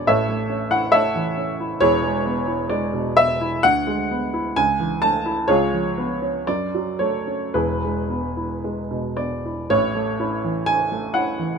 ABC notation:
X:1
M:2/4
L:1/16
Q:1/4=63
K:A
V:1 name="Upright piano"
[Ace]3 f [Ace]4 | [EGc]4 d2 e2 | f4 g2 a2 | [^EGc]4 d2 c2 |
[EGB]6 d2 | c4 g2 f2 |]
V:2 name="Upright piano"
[A,,,A,,] A, C E A, E, C E | [E,,,E,,] G, B, E G, B,, B, E | D,, G, B, E C,, E, A, E | C,, ^E, B, C F,, F, A, C |
[E,,,E,,] G, B, E G, B,, B, E | [A,,,A,,] A, [CE] E,2 A, [CE] E, |]